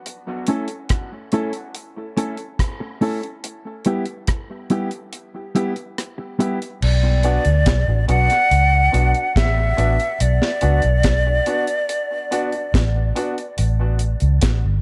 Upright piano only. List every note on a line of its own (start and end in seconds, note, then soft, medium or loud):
0.48 0.64 C#4 medium
0.48 0.65 E4 medium
0.48 0.65 A4 medium
1.33 1.49 C#4 medium
1.33 1.49 E4 medium
1.33 1.50 A4 medium
1.96 2.04 E4 soft
1.96 2.05 A4 soft
2.17 2.33 C#4 medium
2.17 2.34 E4 medium
2.17 2.34 A4 medium
3.01 3.18 C#4 medium
3.01 3.18 E4 medium
3.01 3.18 A4 loud
3.86 4.02 B3 medium
3.86 4.03 E4 medium
3.86 4.03 G4 medium
4.70 4.87 B3 medium
4.70 4.87 E4 medium
4.70 4.88 G4 medium
5.34 5.43 E4 soft
5.34 5.43 G4 soft
5.55 5.71 B3 medium
5.55 5.72 E4 medium
5.55 5.72 G4 loud
6.39 6.56 B3 medium
6.39 6.56 E4 medium
6.39 6.57 G4 medium
7.24 7.40 B3 medium
7.24 7.41 D4 medium
7.24 7.41 F#4 medium
7.88 7.96 D4 soft
7.88 7.96 F#4 soft
8.08 8.25 B3 medium
8.08 8.25 D4 medium
8.08 8.25 F#4 loud
8.92 9.09 B3 medium
8.92 9.10 D4 medium
8.92 9.10 F#4 loud
9.14 9.23 D4 soft
9.14 9.23 F#4 soft
9.77 9.94 B3 medium
9.77 9.94 D4 medium
9.77 9.95 F#4 medium
10.61 10.78 B3 medium
10.61 10.79 D4 medium
10.61 10.79 F#4 loud
11.26 11.34 D4 soft
11.26 11.34 F#4 soft
11.46 11.63 B3 medium
11.46 11.63 D4 medium
11.46 11.64 F#4 loud
12.31 12.48 B3 medium
12.31 12.48 D4 medium
12.31 12.48 F#4 loud
12.53 12.61 D4 soft
12.53 12.61 F#4 soft
13.15 13.32 B3 medium
13.15 13.33 D4 medium
13.15 13.33 F#4 loud